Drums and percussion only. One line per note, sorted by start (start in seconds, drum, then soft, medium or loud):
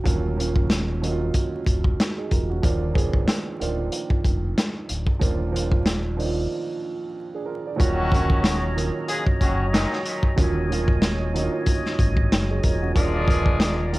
0.05 kick loud
0.05 closed hi-hat medium
0.40 closed hi-hat medium
0.56 kick medium
0.70 snare loud
0.70 closed hi-hat loud
1.04 closed hi-hat medium
1.34 kick medium
1.34 closed hi-hat medium
1.67 kick medium
1.67 closed hi-hat medium
1.84 kick medium
2.00 snare loud
2.00 closed hi-hat medium
2.31 kick medium
2.31 closed hi-hat medium
2.63 kick loud
2.63 closed hi-hat medium
2.95 kick loud
2.95 closed hi-hat medium
3.14 kick medium
3.28 snare loud
3.28 closed hi-hat loud
3.61 closed hi-hat medium
3.92 closed hi-hat medium
4.10 kick loud
4.25 kick medium
4.25 closed hi-hat medium
4.58 snare loud
4.58 closed hi-hat medium
4.89 closed hi-hat medium
5.07 kick medium
5.21 kick loud
5.21 closed hi-hat medium
5.56 closed hi-hat medium
5.72 kick loud
5.86 snare loud
5.86 closed hi-hat loud
6.20 open hi-hat medium
7.80 kick loud
7.80 closed hi-hat medium
8.12 kick loud
8.12 closed hi-hat medium
8.30 kick loud
8.44 snare loud
8.44 closed hi-hat loud
8.78 closed hi-hat medium
9.08 closed hi-hat medium
9.26 kick loud
9.41 kick loud
9.41 closed hi-hat medium
9.74 snare loud
9.74 closed hi-hat loud
9.93 snare soft
10.05 closed hi-hat medium
10.23 kick medium
10.38 kick loud
10.38 closed hi-hat medium
10.72 closed hi-hat medium
10.88 kick loud
11.02 snare loud
11.02 closed hi-hat loud
11.36 closed hi-hat medium
11.66 kick loud
11.66 closed hi-hat medium
11.86 snare soft
11.99 kick loud
11.99 closed hi-hat medium
12.17 kick medium
12.32 snare loud
12.32 closed hi-hat loud
12.63 kick medium
12.63 closed hi-hat medium
12.96 kick loud
12.96 closed hi-hat medium
13.28 kick loud
13.28 closed hi-hat medium
13.46 kick loud
13.60 snare loud
13.60 closed hi-hat loud
13.94 closed hi-hat medium